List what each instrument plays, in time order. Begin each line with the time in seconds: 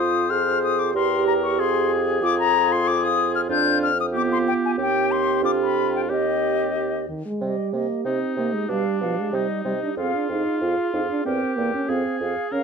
Already playing: bassoon F2, clarinet F4, french horn F4, oboe C5, flute D#6
0.30 clarinet G#4, french horn G#4, flute F6
0.63 flute D#6
0.79 flute D6
0.94 bassoon E2, french horn G4, clarinet G4, oboe A#4, flute C6
1.27 flute A#5
1.44 flute C#6
1.58 bassoon F2, oboe G#4, french horn G#4, flute C6
2.21 bassoon F2, clarinet F4, french horn F4, flute D6
2.40 flute A#5
2.72 flute C6
2.88 flute D6
3.04 flute D#6
3.35 flute F6
3.49 bassoon F2, clarinet D4, french horn D4, oboe F4, flute G6
3.83 flute F6
4.00 flute D#6
4.12 clarinet B3, french horn F4, oboe G4, flute D6
4.32 flute C6
4.48 flute G5
4.65 flute G#5
4.77 bassoon D#2, clarinet C4, french horn G4, oboe G4, flute G5
5.11 flute C6
5.43 bassoon F2, clarinet D4, oboe F4, flute D6
5.62 flute B5
5.96 flute G5
6.09 bassoon D#2, clarinet C4, french horn G4, oboe G4, flute D#5
6.75 french horn G4
7.08 french horn D#3
7.25 french horn G#3
7.41 bassoon C3, french horn G3, clarinet G4, flute D#5
7.73 bassoon C3, french horn A#3, clarinet G4, flute D#5
8.05 bassoon C3, french horn C4, oboe D#4, clarinet G4, flute D#5
8.36 bassoon C3, french horn A#3, clarinet G4, flute D#5
8.54 french horn G#3
8.69 bassoon B2, french horn G3, oboe D4, clarinet G4, flute F5
9.01 bassoon B2, french horn F3, clarinet G4, flute F5
9.20 french horn G#3
9.32 bassoon C3, french horn G3, oboe D#4, clarinet G4, flute D#5
9.65 bassoon C3, french horn G3, clarinet G4, flute D#5
9.83 french horn D4
9.97 bassoon F2, french horn C4, oboe F4, clarinet G#4, flute F5
10.15 french horn D4
10.29 bassoon F2, french horn D#4, clarinet G#4, flute F5
10.61 bassoon F2, french horn F4, clarinet G#4, flute F5
10.92 bassoon F2, french horn D#4, clarinet G#4, flute F5
11.10 french horn D4
11.25 bassoon E2, french horn C4, oboe G4, clarinet A#4, flute G5
11.56 bassoon E2, french horn A#3, clarinet A#4, flute G5
11.74 french horn C#4
11.88 bassoon F2, french horn C4, clarinet G#4, oboe G#4, flute F5
12.20 bassoon F2, clarinet G#4, flute F5
12.52 bassoon C#3, french horn C#4, oboe A#4, clarinet A#4, flute F5